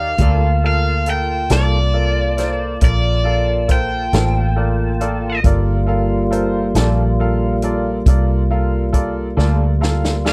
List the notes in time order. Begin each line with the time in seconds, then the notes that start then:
Already playing: D#2 D#4 A#4 D5 F5
0.18 D2 G3 A#3 F4 A4 A#4 D5 A5, kick, closed hi-hat
0.64 F4 A4 A#4 F5
1.06 F4 A4 A#4 F5, closed hi-hat
1.10 G5
1.50 C2 G3 A#3 F4 A4 A#4 D5, snare, closed hi-hat
1.94 F4 A4 A#4 D5
2.37 F4 A4 A#4 C5, snare, closed hi-hat
2.81 A#1 F4 A4 A#4 D5, kick, closed hi-hat
3.24 F4 A4 A#4 F5
3.68 F4 A4 A#4 C5 G5, kick, closed hi-hat
4.13 A1 G3 A#3 F4 A4 A#4 C5, snare, closed hi-hat
4.56 F4 A4 A#4 D5
5.00 F4 A4 A#4 D5, closed hi-hat
5.43 G1 G3 A#3 F4 A4 A#4 D5, kick, closed hi-hat
5.86 F4 A4 A#4 F5
6.31 F4 A4 A#4 C5, closed hi-hat
6.75 A#1 G3 A#3 F4 A4 A#4 D5, snare, closed hi-hat
7.20 F4 A4 A#4 F5
7.62 F4 A4 A#4 D5, closed hi-hat
8.06 C2 F4 A4 A#4 D5, kick, closed hi-hat
8.51 F4 A4 A#4 F5
8.93 F4 A4 A#4 D5, kick, closed hi-hat
9.37 D2 G3 A#3 F4 A4 A#4 D5, snare
9.81 F4 A4 A#4 F5, snare
10.04 snare
10.25 F4 A4 A#4 D5, snare
10.29 F5